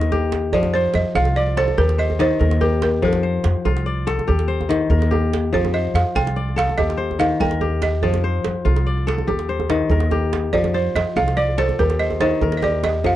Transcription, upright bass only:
0.00 0.53 D#2 medium
0.53 0.88 F2 medium
0.94 1.03 F2 medium
1.16 1.68 C2 medium
1.78 2.31 D#2 medium
2.41 3.03 D#2 loud
3.03 3.38 F2 medium
3.45 3.54 F2 medium
3.66 4.18 C2 medium
4.29 4.81 D#2 medium
4.90 5.53 D#2 loud
5.53 5.88 F2 medium
5.94 6.03 F2 medium
6.16 6.68 C2 medium
6.78 7.31 D#2 medium
7.40 8.03 D#2 loud
8.03 8.38 F2 medium
8.45 8.54 F2 medium
8.66 9.18 C2 medium
9.28 9.81 D#2 medium
9.89 10.53 D#2 medium
10.53 10.88 F2 medium
10.95 11.04 F2 medium
11.16 11.69 C2 medium
11.79 12.32 D#2 medium
12.41 13.04 D#2 medium
13.04 13.16 F2 medium

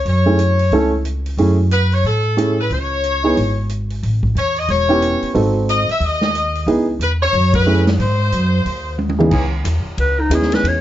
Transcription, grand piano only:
0.26 0.37 A3 medium
0.26 0.37 C#4 soft
0.26 0.37 E4 soft
0.26 0.37 G#4 medium
0.73 0.90 A3 medium
0.73 0.91 C#4 medium
0.73 0.91 E4 medium
0.73 0.91 A4 medium
1.39 1.57 A3 medium
1.39 1.56 C#4 soft
1.39 1.57 E4 soft
1.39 1.57 G#4 medium
2.37 2.55 A3 medium
2.37 2.56 C#4 soft
2.37 2.56 E4 soft
2.37 2.56 G#4 medium
3.23 3.35 B3 medium
3.23 3.35 D#4 medium
3.23 3.35 E4 soft
3.23 3.36 G#4 medium
4.89 5.32 B3 medium
4.89 5.32 C#4 medium
4.89 5.33 E4 soft
4.89 5.33 G4 medium
5.34 5.84 C4 soft
5.34 5.84 D#4 soft
5.34 5.84 F#4 soft
5.34 5.84 A4 medium
6.67 6.86 B3 medium
6.67 6.86 D#4 medium
6.67 6.86 E4 soft
6.67 6.86 G#4 medium
7.67 7.85 A3 medium
7.67 7.85 C#4 soft
7.67 7.85 E4 soft
7.67 7.85 G#4 medium
9.19 9.30 C#3 soft
9.19 9.30 B3 soft
9.19 9.30 D#4 soft
9.19 9.30 E4 soft
9.19 9.31 G#4 medium
10.31 10.80 B3 soft
10.31 10.80 C#4 soft
10.31 10.80 D#4 soft
10.31 10.80 E4 soft
10.31 10.80 G#4 medium

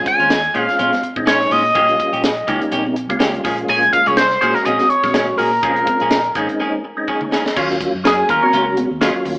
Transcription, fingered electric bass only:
0.20 0.48 D#2 medium
0.55 0.66 A#2 medium
0.79 0.90 A#1 medium
1.03 muted fingered electric bass stroke soft
1.16 1.44 A#1 medium
1.51 1.71 A#2 medium
1.75 1.95 A#1 medium
2.13 2.41 A#1 medium
2.48 2.59 C#2 medium
2.72 3.10 A#1 medium
3.10 3.38 C#2 medium
3.45 3.64 A#1 medium
3.68 3.88 A#1 medium
4.07 4.35 C2 medium
4.42 4.53 A#2 medium
4.67 4.77 A#1 medium
4.91 muted fingered electric bass stroke soft
5.04 5.32 A#1 medium
5.40 5.59 A#2 medium
5.63 5.82 A#1 medium
6.01 6.29 A#1 medium
6.35 6.46 G#1 medium
7.57 7.87 D#2 medium
7.94 8.22 F#2 medium
8.29 8.40 D#2 medium
8.53 8.83 C#2 medium
8.91 9.10 D#2 loud
9.16 muted fingered electric bass stroke soft
9.26 9.36 D#2 medium

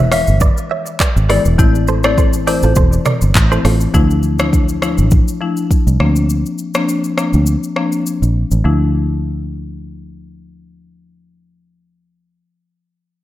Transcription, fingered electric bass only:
0.00 0.24 E1 loud
0.28 0.49 G1 medium
1.16 1.37 G#1 medium
1.46 1.55 E1 medium
1.59 2.59 A1 loud
2.63 2.73 A1 medium
2.76 2.98 E1 loud
3.22 3.32 G1 medium
3.35 3.57 A1 loud
3.65 3.86 A1 loud
3.94 5.00 D2 loud
4.99 5.20 A1 medium
5.87 5.96 C2 medium
6.00 6.43 D2 medium
7.34 7.55 D2 medium
8.22 8.43 A#1 medium
8.52 8.61 A1 medium
8.65 12.42 D2 medium

